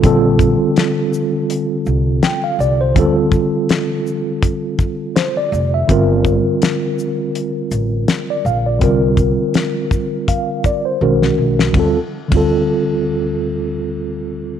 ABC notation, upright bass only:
X:1
M:4/4
L:1/16
Q:"Swing 16ths" 1/4=82
K:Dm
V:1 name="Upright bass" clef=bass
B,,,3 z6 z C,,2 z2 C,,2 | D,,3 z8 z3 F,,,2 | G,,,3 z6 z A,,,2 z2 B,,,2 | C,,3 z8 z =B,,,2 B,,,2 |
D,, z2 D,,12- D,, |]